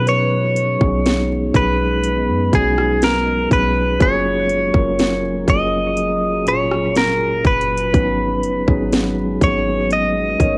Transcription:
Already playing: 808-style bass B2, tine electric piano F#3 B3 C#4 D#4 G#4, ambient pad G#3 B3 D#4
0.07 synth pluck B4, clean electric guitar C#5, closed hi-hat
0.56 closed hi-hat
0.79 808-style bass B1, tine electric piano F#3 B3 C#4 D#4 G#4, kick
1.06 snare, closed hi-hat
1.53 808-style bass B1, tine electric piano F#3 B3 C#4 D#4 G#4, clean electric guitar B4, kick, closed hi-hat
2.04 closed hi-hat
2.28 808-style bass F#2
2.51 808-style bass B1, tine electric piano F#3 B3 C#4 D#4 F#4, clean electric guitar G#4, kick, closed hi-hat
2.78 cross-stick
3.02 clean electric guitar A#4, snare, closed hi-hat
3.50 808-style bass B1, tine electric piano F#3 B3 C#4 D#4 G#4, clean electric guitar B4, kick, closed hi-hat
3.99 808-style bass F#1, tine electric piano F#3 A#3 C#4 F4 G#4, ambient pad F#3 F4 G#4 A#5, clean electric guitar C#5, kick, closed hi-hat
4.49 closed hi-hat
4.73 808-style bass F#1, tine electric piano F#3 A#3 C#4 F4 A#4, kick
4.99 snare, closed hi-hat
5.46 808-style bass F#1, tine electric piano F#3 A#3 C#4 F4 G#4, clean electric guitar D#5, kick, closed hi-hat
5.97 closed hi-hat
6.45 tine electric piano A#2 F#3 C#4 F4 G#4, clean electric guitar C#5, closed hi-hat
6.71 cross-stick
6.96 clean electric guitar A#4, snare, closed hi-hat
7.45 808-style bass F#1, clean electric guitar B4, kick, closed hi-hat
7.61 closed hi-hat
7.77 closed hi-hat
7.92 808-style bass G#1, tine electric piano F#3 B3 C#4 D#4 B4, ambient pad F#3 G#3 B3, kick, closed hi-hat
8.43 808-style bass F#1, closed hi-hat
8.66 808-style bass G#1, tine electric piano F#3 B3 C#4 D#4 G#4, kick
8.92 snare, closed hi-hat
9.40 808-style bass G#1, tine electric piano F#3 A#3 C#4 D#4 G#4, clean electric guitar C#5, kick, closed hi-hat
9.47 tine electric piano B3
9.91 clean electric guitar D#5, closed hi-hat
10.38 808-style bass G#1, tine electric piano F#3 B3 C#4 D#4 A#4, synth pluck C#5, kick, closed hi-hat

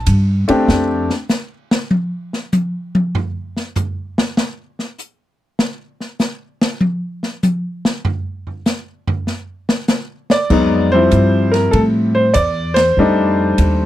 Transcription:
0.06 upright bass G2, kick, hi-hat pedal, ride
0.48 upright piano A3 C4 D4 G4, muted upright bass stroke, ride
0.68 upright bass F2, snare
1.10 snare
1.29 snare, hi-hat pedal
1.71 snare
1.91 high tom
2.33 snare
2.52 hi-hat pedal, high tom
2.95 high tom
3.15 floor tom
3.57 snare
3.76 floor tom, hi-hat pedal
4.18 snare
4.37 snare
4.79 snare
4.98 hi-hat pedal
5.59 snare
6.00 snare
6.19 snare, hi-hat pedal
6.61 snare
6.81 high tom
7.23 snare
7.43 hi-hat pedal, high tom
7.85 snare
8.05 floor tom
8.47 floor tom
8.66 snare, hi-hat pedal
9.08 floor tom
9.27 snare
9.69 snare
9.88 snare, hi-hat pedal
10.30 upright piano D5, snare
10.50 upright bass F2, upright piano F#3 G#3 B3 D#4, kick, crash
10.92 upright piano F3 G3 C4 E4 C5
11.11 upright bass G2, kick, hi-hat pedal, ride
11.52 upright piano A#4, snare, ride
11.71 upright bass A2, upright piano A4, kick, ride
12.15 upright piano C5
12.34 upright bass E2, upright piano D5, kick, hi-hat pedal, ride
12.74 upright piano C5, snare, ride
12.97 upright bass F2, upright piano G3 A3 D4 D#4
13.58 upright bass D#2, kick, hi-hat pedal, ride

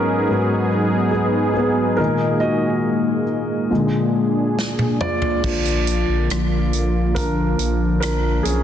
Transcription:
Already playing: grand piano G#2 F#3 B3 C#4 D#4 F#4 A#4 B4 C#5, analog synth pad F#3 B3 D#4 G#4
0.28 grand piano G#2 F#3 B3
1.11 grand piano B3 G#4
1.54 grand piano B3 G#4
1.97 grand piano A#2 D#3 G#3 D#4 A#4, analog synth pad G#3 A#3
2.40 grand piano F#4 D#5
3.70 grand piano A#2 D3 G#3, analog synth pad D4 G#4
4.59 snare
4.79 high tom
5.01 grand piano F4 D5, mid tom
5.22 floor tom
5.44 sub bass A#1, analog synth pad D3 F3 A#3 F4, grand piano F3 A#3 D4, kick, crash
5.65 closed hi-hat
5.87 closed hi-hat
6.09 sub bass A#1
6.30 sub bass A#1, cross-stick, closed hi-hat
6.73 closed hi-hat
7.15 grand piano D4 A#4, kick, closed hi-hat
7.59 sub bass A#1, closed hi-hat
8.00 grand piano D4 A#4, cross-stick, closed hi-hat
8.43 sub bass B1, grand piano C#4 G#4, closed hi-hat

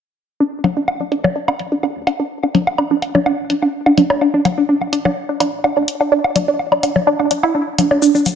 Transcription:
0.40 synth arpeggio sound D4
0.64 analog synth bass D2, synth arpeggio sound D4, closed hi-hat, low conga, low woodblock
0.77 analog synth bass A1, synth arpeggio sound D4
0.88 low woodblock
1.00 synth arpeggio sound D4
1.12 synth arpeggio sound D4, closed hi-hat
1.24 high bongo, low conga, low woodblock
1.35 synth arpeggio sound D4
1.48 synth arpeggio sound D4, high woodblock, low woodblock
1.59 analog synth bass A1, closed hi-hat
1.72 synth arpeggio sound D4
1.83 synth arpeggio sound D4, low woodblock
1.96 analog synth bass D2
2.07 synth arpeggio sound D4, closed hi-hat, low woodblock
2.19 synth arpeggio sound D4
2.43 synth arpeggio sound D4, low woodblock
2.55 analog synth bass D2, synth arpeggio sound D4, closed hi-hat, low conga
2.67 analog synth bass A1, low woodblock
2.78 synth arpeggio sound D4, high woodblock
2.91 synth arpeggio sound D4
3.02 closed hi-hat, low woodblock
3.15 synth arpeggio sound D4, high bongo, low conga
3.26 analog synth bass A1, synth arpeggio sound D4, low woodblock
3.39 analog synth bass A1
3.50 synth arpeggio sound D4, closed hi-hat
3.62 synth arpeggio sound D4, low woodblock
3.86 synth arpeggio sound D4, low woodblock
3.97 analog synth bass D2, synth arpeggio sound D4, closed hi-hat, low conga
4.10 analog synth bass D2, high bongo, high woodblock
4.21 synth arpeggio sound D4, low woodblock
4.34 synth arpeggio sound D4
4.45 analog synth bass D2, closed hi-hat, low conga, low woodblock
4.58 analog synth bass A1, synth arpeggio sound D4
4.69 synth arpeggio sound D4
4.81 low woodblock
4.93 synth arpeggio sound D4, closed hi-hat
5.05 synth arpeggio sound D4, high bongo, low conga, low woodblock
5.29 synth arpeggio sound D4
5.40 analog synth bass A1, synth arpeggio sound D4, closed hi-hat, high woodblock, low woodblock
5.64 synth arpeggio sound D4, low woodblock
5.77 analog synth bass D2, synth arpeggio sound D4
5.88 closed hi-hat
6.01 synth arpeggio sound D4, low woodblock
6.12 synth arpeggio sound D4
6.24 low woodblock
6.35 analog synth bass D2, synth arpeggio sound D4, closed hi-hat, low conga
6.48 analog synth bass A1, synth arpeggio sound D4
6.59 low woodblock
6.72 synth arpeggio sound D4, high woodblock
6.83 synth arpeggio sound D4, closed hi-hat, low woodblock
6.96 high bongo, low conga
7.07 analog synth bass A1, synth arpeggio sound D4
7.19 analog synth bass A1, synth arpeggio sound D4, low woodblock
7.31 synth arpeggio sound D4, closed hi-hat
7.43 synth arpeggio sound E4, low woodblock
7.55 synth arpeggio sound D4
7.78 analog synth bass D2, synth arpeggio sound D4, closed hi-hat, low conga, low woodblock
7.91 analog synth bass D2, synth arpeggio sound D4, high bongo
8.02 synth arpeggio sound D4, shaker
8.15 synth arpeggio sound D4, shaker
8.26 analog synth bass D2, closed hi-hat, low conga, low woodblock, shaker

